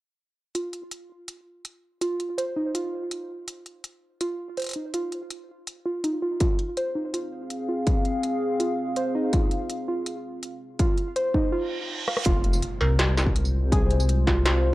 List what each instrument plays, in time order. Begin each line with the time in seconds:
0.55 synth pluck F4, closed hi-hat
0.73 closed hi-hat
0.91 closed hi-hat
1.28 closed hi-hat
1.65 closed hi-hat
2.01 synth pluck F4, closed hi-hat
2.20 closed hi-hat
2.38 synth pluck C5, closed hi-hat
2.56 synth pluck D#4
2.75 synth pluck F4, closed hi-hat
3.11 closed hi-hat
3.48 closed hi-hat
3.66 closed hi-hat
3.84 closed hi-hat
4.21 synth pluck F4, closed hi-hat
4.57 synth pluck C5, closed hi-hat
4.60 closed hi-hat
4.62 closed hi-hat
4.64 closed hi-hat
4.67 closed hi-hat
4.69 closed hi-hat
4.71 closed hi-hat
4.73 synth pluck D#4, closed hi-hat
4.94 synth pluck F4, closed hi-hat
5.12 closed hi-hat
5.30 closed hi-hat
5.67 closed hi-hat
5.85 synth pluck F4
6.04 synth pluck D#4, closed hi-hat
6.22 synth pluck F4
6.40 analog synth pad C4 G#4 F5, synth pluck F4, kick, closed hi-hat
6.59 closed hi-hat
6.77 synth pluck C5, closed hi-hat
6.95 synth pluck D#4
7.14 synth pluck F4, closed hi-hat
7.50 closed hi-hat
7.69 synth pluck F4
7.87 kick, closed hi-hat
8.05 closed hi-hat
8.23 closed hi-hat
8.60 synth pluck F4, closed hi-hat
8.96 synth pluck C5, closed hi-hat
9.15 synth pluck D#4
9.33 synth pluck F4, kick, closed hi-hat
9.51 closed hi-hat
9.70 closed hi-hat
9.88 synth pluck F4
10.06 closed hi-hat
10.43 closed hi-hat
10.79 synth pluck F4, kick, closed hi-hat
10.98 closed hi-hat
11.16 synth pluck C5, closed hi-hat
11.34 synth pluck D#4, kick
11.52 synth pluck F4, reverse cymbal
12.08 synth pluck F5, cross-stick
12.17 cross-stick
12.26 detuned saw bass F1, analog synth pad G#3 F4 C5, synth pluck F4, kick, closed hi-hat, impact
12.44 closed hi-hat
12.53 tambourine
12.62 closed hi-hat
12.81 detuned saw bass C2, synth pluck A#4, struck metal
12.99 snare, closed hi-hat
13.17 snare, tambourine
13.26 kick
13.36 closed hi-hat
13.45 tambourine
13.54 detuned saw bass C2
13.72 synth pluck G#4, kick, closed hi-hat
13.91 closed hi-hat
14.00 tambourine
14.09 closed hi-hat
14.27 detuned saw bass C2, synth pluck F4, kick, snare
14.45 synth pluck F4, snare, closed hi-hat, struck metal